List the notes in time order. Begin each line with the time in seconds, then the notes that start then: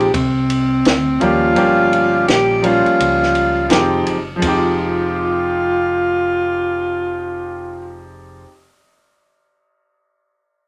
Already playing: A#1
0.00 G4, ride
0.14 C2 C4, kick, ride
0.50 ride
0.85 D2, snare, hi-hat pedal, ride
1.20 D#2 F3 G3 A#3 C#4 F4 G4, ride
1.54 G1 F3 G3 A#3 C#4 G4, ride
1.93 ride
2.28 A#1 G4, snare, hi-hat pedal, ride
2.61 F3 G3 A#3 C#4 F4, ride
2.65 F4
2.86 muted fingered electric bass stroke, ride
3.00 C#2, ride
3.23 snare
3.35 ride
3.69 F1 F3 G#3 C4 D#4 G4, snare, hi-hat pedal, ride
4.07 F#1, ride
4.36 F3 G#3
4.42 F1 C4 D#4 F4, kick, ride
4.48 G4